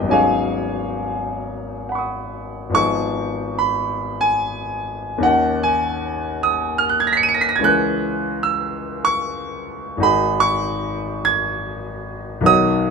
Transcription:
grand piano
Already playing: D#2 G3 B3 C#4 D#4 G4 B4 D#5 G5 B5
0.01 G#1 F#3
0.06 B3 C#4
0.10 D#4 G#4 C#5 F5 G#5
1.89 F#5 B5
1.95 C#6 D#6
2.70 G#1 F3 B3 D#4
2.75 G#4 C#6
3.58 B5
4.21 G#5
5.18 D#2 D#3 C#4
5.22 D#4 A#4 F#5
5.63 G#5
6.43 D#6
6.78 F6
6.89 F#6
7.00 G#6
7.07 A#6
7.13 B6
7.17 C#7
7.23 D#7
7.29 C#7
7.34 A#6
7.41 B6
7.49 A#6
7.56 C#2 G#6
7.60 E3 C#4 G#4 A#4 F#6
8.43 E6
9.05 C#6
9.97 G#1 D#3 D#4 F#4
10.02 G#4 B5
10.40 C#6
11.25 G#6
12.41 B1 D#3 D#4
12.45 F#4 C#5 D#6

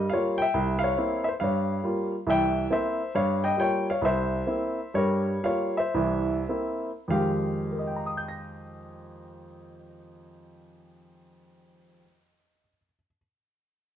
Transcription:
grand piano
Already playing: A#4
0.10 G3 A#3 F4 C#5 F5
0.38 G5
0.42 E5
0.54 C2
0.79 F5
0.84 C#5
0.98 A#3 C4 E4
1.24 E5
1.29 C5
1.40 G2 C#5 F5
1.83 G3 A#3 F4
2.27 C2 E3 E5 G5
2.70 A#3 C4 E4 C5 E5
3.15 G2 C#5 F5
3.44 D#5 G5
3.57 G3 A#3 F4 C#5 G5
3.90 C#5 F5
4.02 C2 C5 E5
4.47 A#3 C4 E4
4.94 G2 G3 A#4 C#5
5.43 G3 A#3 F4 C#5 F5
5.77 C5 E5
5.94 C2 E3
6.49 A#3 C4 E4
7.08 F2 D#3 G#3 G4 F5
7.72 A#4
7.79 D#5
7.87 G5
7.96 A#5
8.06 D#6
8.17 G6
8.28 A#6

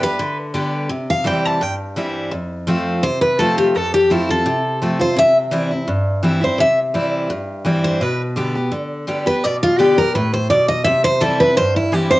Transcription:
steel-string acoustic guitar
Already playing: G2
0.03 B3 G4 B4
0.19 D3
0.54 D3 G3 B3 G4
0.89 C3
1.10 F5
1.24 E3 G3 C4 E4 G5
1.45 A5
1.61 G2 G5
1.96 E3 G3 C4 E4
2.31 F2
2.67 F3 A3 C4 F4
3.03 C3 C5
3.21 B4
3.39 F3 A3 C4 F4 A4
3.58 G4
3.75 F2 A4
3.94 G4
4.10 F3 A3 C4 E4 F4
4.29 C4 F4 A4
4.46 C3
4.82 F3 A3 C4 F4
4.99 C4 F4 C5
5.17 C3 E5
5.51 E3 G3 C4 E4
5.71 C4 E4
5.88 G2
6.23 E3 G3 C4 E4
6.41 C4 E4 C5
6.58 C3 E5
6.94 E3 G3 C4 E4
7.30 G2
7.65 E3 G3 C4 E4
7.84 C5
8.01 B2 B4
8.36 D3 G3 B3 G4
8.55 B3 G4
8.72 D3
9.07 D3 G3 B3 G4
9.26 B3 G4 B4
9.44 B2 D5
9.63 F4
9.79 D3 G3 B3 G4
9.98 B3 G4 A#4
10.15 A2 B4
10.34 C5
10.50 B2 D5
10.68 D#5
10.84 C3 E5
11.04 C5
11.20 E3 G3 C4 E4 A4
11.40 C4 E4 B4
11.57 G2 C5
11.76 E4
11.92 E3 G3 C4 E4 G4
12.11 C4 E4 C5

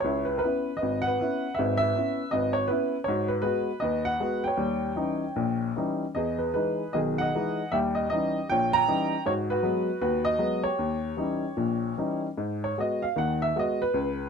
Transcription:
upright piano
0.00 C#2 C#5
0.05 E4
0.25 B4
0.38 A#4 B4
0.44 B3 C#4 E4
0.77 B4 D#5
0.82 G#1
1.02 F#5
1.07 B4
1.20 B3 C#4 E4
1.55 E5
1.59 G#1 G#2 B4
1.77 E5
1.82 B4
1.96 B3 C#4 E4
2.31 G#1 D#5
2.36 B4
2.53 C#5
2.68 B3 C#4 E4 B4
3.04 G#2 F#4 C#5
3.28 B4
3.42 G#3 B3 F#4 B4
3.80 D#2 B4 D#5
4.05 F#5
4.20 G#3 B3 F#4
4.44 C#5 G5
4.57 D#2 G3
4.96 E3 G3 C#4 D#4
5.36 A#1 A#2
5.76 E3 G3 C#4 D#4
6.15 E2 G#4 D#5
6.39 B4
6.54 E3 G#3 D#4 B4
6.93 B1 D#3 G#4 D#5
7.18 D#5 F#5
7.35 E3 G#3 D#4
7.72 D#2 G3 G4 E5
7.95 D#5
8.10 E3 G3 C#4 D#4 D#5
8.50 A#1 A#2 C#5 G5
8.73 G5 A#5
8.88 E3 G3 C#4 D#4
9.26 G#2 F#4 C#5
9.50 F#4 B4
9.63 F#3 G#3 B3
10.01 D#2 F#4 B4
10.25 D#5
10.38 F#3 G#3 B3
10.64 G4 C#5
10.79 D#2
11.17 E3 G3 C#4 D#4
11.57 A#1 A#2
11.98 E3 G3 C#4 D#4
12.38 G#2
12.64 C#5
12.78 G#3 B3 F#4 D#5
13.02 F5
13.16 D#2 D#3 F#5
13.42 E5
13.56 G#3 B3 F#4 D#5
13.82 B4
13.94 C#2

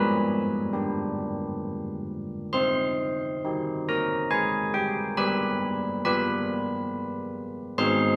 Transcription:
church bells
Already playing: G3 B4 B5
0.73 D4 G4
2.53 C4 C5 C6
3.44 D#4 G4
3.89 A#4 A#5
4.31 G#4 G#5
4.74 G4 G5
5.17 G3 B4 B5
6.05 F4 G4 B4 B5
7.78 G#3 D#4 G#4 C5 C6

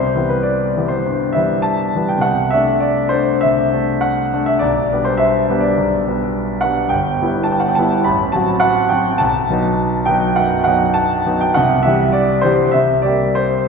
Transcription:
grand piano
Already playing: C2 C5
0.15 E3 G3 B3
0.29 B4
0.43 D5
0.77 E3 G3 B3
0.88 C5
1.06 G2
1.33 E3 G3 B3 E5
1.62 A5
1.95 E3 G3 B3
2.08 G5
2.18 C2 F#5
2.51 A3 D4 E5
2.80 D5
3.09 A3 D4 C5
3.41 C2 E5
3.73 A3 D4
4.01 F#5
4.33 A3 D4
4.46 E5
4.59 B1 D5
4.92 G3 B3 D4
5.05 C5
5.17 E5
5.49 G3 B3 D4
5.60 D5
5.78 B1
6.07 G3 B3 D4
6.61 G3 B3 D4 F#5
6.89 G1 G5
7.22 G3 B3 E4
7.43 A5
7.52 G5
7.60 F#5
7.69 G5
7.75 G3 B3 E4 A5
8.04 A1 B5
8.32 F#3 C4 F#4 A5
8.60 F#5
8.89 F#3 C4 F#4 G5
9.18 B1 A5
9.50 F#3 B3 D#4
10.06 F#3 B3 D#4 G5
10.36 F#2 F#5
10.64 F#3 B3 D#4 F#5
10.94 A5
11.26 F#3 B3 D#4
11.41 G5
11.54 C2 F#5
11.83 E3 G3 G4 E5
12.12 D5
12.41 E3 G3 G4 C5
12.72 C2 E5
13.02 G3 A#3 G4 D5
13.35 C5

